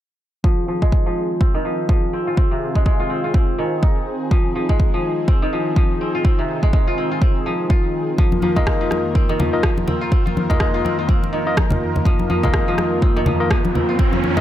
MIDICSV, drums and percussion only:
0, 0, Header, 1, 2, 480
1, 0, Start_track
1, 0, Key_signature, -4, "minor"
1, 0, Tempo, 483871
1, 438, Time_signature, 4, 2, 24, 8
1, 14291, End_track
2, 0, Start_track
2, 0, Title_t, "Drums"
2, 437, Note_on_c, 9, 36, 101
2, 536, Note_off_c, 9, 36, 0
2, 814, Note_on_c, 9, 36, 69
2, 914, Note_off_c, 9, 36, 0
2, 916, Note_on_c, 9, 36, 96
2, 1015, Note_off_c, 9, 36, 0
2, 1396, Note_on_c, 9, 36, 104
2, 1495, Note_off_c, 9, 36, 0
2, 1875, Note_on_c, 9, 36, 108
2, 1974, Note_off_c, 9, 36, 0
2, 2355, Note_on_c, 9, 36, 106
2, 2454, Note_off_c, 9, 36, 0
2, 2732, Note_on_c, 9, 36, 74
2, 2831, Note_off_c, 9, 36, 0
2, 2835, Note_on_c, 9, 36, 102
2, 2934, Note_off_c, 9, 36, 0
2, 3315, Note_on_c, 9, 36, 111
2, 3415, Note_off_c, 9, 36, 0
2, 3796, Note_on_c, 9, 36, 109
2, 3895, Note_off_c, 9, 36, 0
2, 4277, Note_on_c, 9, 36, 109
2, 4377, Note_off_c, 9, 36, 0
2, 4655, Note_on_c, 9, 36, 74
2, 4754, Note_off_c, 9, 36, 0
2, 4758, Note_on_c, 9, 36, 108
2, 4857, Note_off_c, 9, 36, 0
2, 5237, Note_on_c, 9, 36, 117
2, 5336, Note_off_c, 9, 36, 0
2, 5717, Note_on_c, 9, 36, 108
2, 5816, Note_off_c, 9, 36, 0
2, 6197, Note_on_c, 9, 36, 103
2, 6296, Note_off_c, 9, 36, 0
2, 6575, Note_on_c, 9, 36, 79
2, 6674, Note_off_c, 9, 36, 0
2, 6678, Note_on_c, 9, 36, 111
2, 6777, Note_off_c, 9, 36, 0
2, 7158, Note_on_c, 9, 36, 113
2, 7257, Note_off_c, 9, 36, 0
2, 7638, Note_on_c, 9, 36, 113
2, 7737, Note_off_c, 9, 36, 0
2, 8118, Note_on_c, 9, 62, 50
2, 8119, Note_on_c, 9, 36, 111
2, 8217, Note_off_c, 9, 62, 0
2, 8218, Note_off_c, 9, 36, 0
2, 8255, Note_on_c, 9, 63, 76
2, 8354, Note_off_c, 9, 63, 0
2, 8355, Note_on_c, 9, 63, 86
2, 8454, Note_off_c, 9, 63, 0
2, 8496, Note_on_c, 9, 36, 75
2, 8496, Note_on_c, 9, 64, 67
2, 8499, Note_on_c, 9, 62, 37
2, 8595, Note_off_c, 9, 64, 0
2, 8596, Note_off_c, 9, 36, 0
2, 8598, Note_on_c, 9, 37, 101
2, 8599, Note_off_c, 9, 62, 0
2, 8599, Note_on_c, 9, 36, 105
2, 8697, Note_off_c, 9, 37, 0
2, 8698, Note_off_c, 9, 36, 0
2, 8837, Note_on_c, 9, 37, 54
2, 8842, Note_on_c, 9, 63, 62
2, 8847, Note_on_c, 9, 62, 48
2, 8937, Note_off_c, 9, 37, 0
2, 8941, Note_off_c, 9, 63, 0
2, 8946, Note_off_c, 9, 62, 0
2, 9078, Note_on_c, 9, 36, 107
2, 9177, Note_off_c, 9, 36, 0
2, 9222, Note_on_c, 9, 62, 38
2, 9318, Note_on_c, 9, 63, 58
2, 9321, Note_off_c, 9, 62, 0
2, 9322, Note_on_c, 9, 64, 99
2, 9417, Note_off_c, 9, 63, 0
2, 9421, Note_off_c, 9, 64, 0
2, 9556, Note_on_c, 9, 37, 93
2, 9558, Note_on_c, 9, 36, 107
2, 9655, Note_off_c, 9, 37, 0
2, 9657, Note_off_c, 9, 36, 0
2, 9696, Note_on_c, 9, 62, 41
2, 9699, Note_on_c, 9, 63, 83
2, 9796, Note_off_c, 9, 62, 0
2, 9797, Note_on_c, 9, 64, 72
2, 9798, Note_off_c, 9, 63, 0
2, 9897, Note_off_c, 9, 64, 0
2, 10037, Note_on_c, 9, 36, 108
2, 10039, Note_on_c, 9, 62, 45
2, 10136, Note_off_c, 9, 36, 0
2, 10138, Note_off_c, 9, 62, 0
2, 10187, Note_on_c, 9, 63, 75
2, 10286, Note_off_c, 9, 63, 0
2, 10286, Note_on_c, 9, 63, 85
2, 10386, Note_off_c, 9, 63, 0
2, 10415, Note_on_c, 9, 36, 75
2, 10420, Note_on_c, 9, 64, 77
2, 10425, Note_on_c, 9, 62, 38
2, 10514, Note_off_c, 9, 36, 0
2, 10515, Note_on_c, 9, 37, 92
2, 10517, Note_on_c, 9, 36, 98
2, 10520, Note_off_c, 9, 64, 0
2, 10524, Note_off_c, 9, 62, 0
2, 10615, Note_off_c, 9, 37, 0
2, 10617, Note_off_c, 9, 36, 0
2, 10769, Note_on_c, 9, 62, 49
2, 10770, Note_on_c, 9, 63, 55
2, 10869, Note_off_c, 9, 62, 0
2, 10870, Note_off_c, 9, 63, 0
2, 10998, Note_on_c, 9, 36, 102
2, 11001, Note_on_c, 9, 63, 60
2, 11097, Note_off_c, 9, 36, 0
2, 11100, Note_off_c, 9, 63, 0
2, 11146, Note_on_c, 9, 62, 42
2, 11245, Note_off_c, 9, 62, 0
2, 11479, Note_on_c, 9, 36, 104
2, 11481, Note_on_c, 9, 37, 93
2, 11484, Note_on_c, 9, 63, 86
2, 11578, Note_off_c, 9, 36, 0
2, 11580, Note_off_c, 9, 37, 0
2, 11583, Note_off_c, 9, 63, 0
2, 11611, Note_on_c, 9, 64, 91
2, 11626, Note_on_c, 9, 62, 50
2, 11710, Note_off_c, 9, 64, 0
2, 11725, Note_off_c, 9, 62, 0
2, 11862, Note_on_c, 9, 64, 70
2, 11958, Note_on_c, 9, 36, 105
2, 11961, Note_off_c, 9, 64, 0
2, 11967, Note_on_c, 9, 62, 54
2, 12057, Note_off_c, 9, 36, 0
2, 12066, Note_off_c, 9, 62, 0
2, 12097, Note_on_c, 9, 63, 78
2, 12196, Note_off_c, 9, 63, 0
2, 12200, Note_on_c, 9, 63, 78
2, 12299, Note_off_c, 9, 63, 0
2, 12335, Note_on_c, 9, 36, 72
2, 12338, Note_on_c, 9, 62, 40
2, 12346, Note_on_c, 9, 64, 77
2, 12434, Note_off_c, 9, 36, 0
2, 12436, Note_on_c, 9, 37, 94
2, 12437, Note_on_c, 9, 36, 97
2, 12438, Note_off_c, 9, 62, 0
2, 12446, Note_off_c, 9, 64, 0
2, 12535, Note_off_c, 9, 37, 0
2, 12536, Note_off_c, 9, 36, 0
2, 12677, Note_on_c, 9, 63, 60
2, 12678, Note_on_c, 9, 37, 55
2, 12684, Note_on_c, 9, 62, 50
2, 12776, Note_off_c, 9, 63, 0
2, 12777, Note_off_c, 9, 37, 0
2, 12783, Note_off_c, 9, 62, 0
2, 12918, Note_on_c, 9, 36, 103
2, 13017, Note_off_c, 9, 36, 0
2, 13062, Note_on_c, 9, 62, 34
2, 13154, Note_on_c, 9, 63, 51
2, 13155, Note_on_c, 9, 64, 93
2, 13162, Note_off_c, 9, 62, 0
2, 13253, Note_off_c, 9, 63, 0
2, 13254, Note_off_c, 9, 64, 0
2, 13397, Note_on_c, 9, 36, 107
2, 13399, Note_on_c, 9, 37, 89
2, 13496, Note_off_c, 9, 36, 0
2, 13498, Note_off_c, 9, 37, 0
2, 13537, Note_on_c, 9, 62, 49
2, 13543, Note_on_c, 9, 63, 80
2, 13636, Note_off_c, 9, 62, 0
2, 13642, Note_off_c, 9, 63, 0
2, 13644, Note_on_c, 9, 64, 78
2, 13743, Note_off_c, 9, 64, 0
2, 13877, Note_on_c, 9, 36, 104
2, 13880, Note_on_c, 9, 62, 51
2, 13976, Note_off_c, 9, 36, 0
2, 13980, Note_off_c, 9, 62, 0
2, 14014, Note_on_c, 9, 63, 85
2, 14113, Note_off_c, 9, 63, 0
2, 14123, Note_on_c, 9, 63, 85
2, 14222, Note_off_c, 9, 63, 0
2, 14254, Note_on_c, 9, 64, 84
2, 14255, Note_on_c, 9, 36, 76
2, 14259, Note_on_c, 9, 62, 37
2, 14291, Note_off_c, 9, 36, 0
2, 14291, Note_off_c, 9, 62, 0
2, 14291, Note_off_c, 9, 64, 0
2, 14291, End_track
0, 0, End_of_file